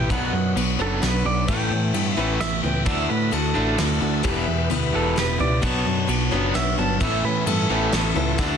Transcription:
Already playing: E4 G4 B4 G5
0.10 B1 B2 F#3 B3 D4 F#4 B4 C#5 F#5, kick, ride
0.33 F#2 B2 F#3
0.56 B1 B2 F#3 B3 D4 F#4 C#5, ride
0.79 F#1 B2 F#3 B3 D4 F#4 A4 C#5
1.01 B1 B2 F#3 B3 D4 F#4 B4 C#5, snare, ride
1.25 B1 B2 F#3 D5
1.47 A1 A2 E3 A3 B3 C#4 E4 A4 B4 G5, kick, ride
1.71 A2 E3
1.94 G2 A2 E3 A3 B3 C#4 E4, ride
2.15 A1 A2 E3 A3 B3 C#4 E4 E5
2.40 A2 E3 A3 B3 E4 E5, snare, ride
2.63 C#2 A2 E3 B3 C#4 E4 G5
2.85 D2 D3 A3 D4 E4 F#4 A4 E5, kick, ride
3.09 A2 D3 A3 B4
3.31 D2 D3 A3 D4 E4 F#4 A4, ride
3.54 A1 D3 A3 D4 E4 F#4
3.78 D2 D3 A3 D4 E4 F#4, snare, ride
4.01 D2 D3 A3 D4 E4 F#4
4.23 E1 E2 B2 E3 B3 E4 G4 B4, kick, ride
4.47 E2 B2
4.70 D2 E2 B2 B3 E4 G4 B4, ride
4.93 E1 E2 B2 E3 A4
5.16 E1 E2 B2 B3 E4 G4 B4, snare, ride
5.39 C#2 E2 B2 E4 G4 B4 D5
5.62 B1 B2 F#3 B3 D4 F#4 B4 C#5 A5, kick, ride
5.86 F#2 B2 F#3
6.07 B1 B2 F#3 B3 D4 F#4 C#5, ride
6.31 F#1 B2 F#3 B3 D4 F#4 C#5
6.54 B1 B2 F#3 B3 D4 F#4 C#5 E5, snare, ride
6.78 G1 B2 F#3 B3 D4 F#4 C#5 A5
6.99 A1 A2 E3 A3 B3 C#4 E4 A4 B4 C#5 E5, kick, ride
7.24 A2 E3 B4
7.46 G2 A2 E3 A3 B3 C#4 E4 A4, ride
7.69 A1 A2 E3 A3 B3 C#4 E4
7.92 A1 A2 E3 A3 B3 C#4 E4, snare, ride
8.15 C#2 A2 E3 B3 C#4 E4
8.37 D2 D3 A3 D4 E4 F#4 A4 D5, kick, snare

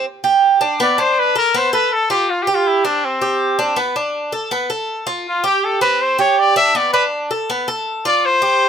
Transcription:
0.24 G4
0.61 D4
0.80 B3 D5
0.98 D4 C5
1.19 B4
1.36 A4 A#4
1.54 B3 C5
1.73 A4 B4
1.93 A4
2.10 F4 G4
2.30 F4
2.42 G4
2.47 G4
2.54 F4
2.67 E4
2.85 C4 D4
3.05 C4
3.21 G4
3.59 D4
3.76 B3
3.96 D4
4.32 A4
4.51 B3
4.70 A4
5.07 F4
5.28 F4
5.44 G4
5.64 A4
5.81 C4 B4
6.02 C5
6.19 G4 C#5
6.39 D5
6.56 D4 E5
6.75 B3 D5
6.93 D4 B4
7.31 A4
7.50 B3
7.68 A4
8.05 F4 D5
8.26 C5
8.42 G4

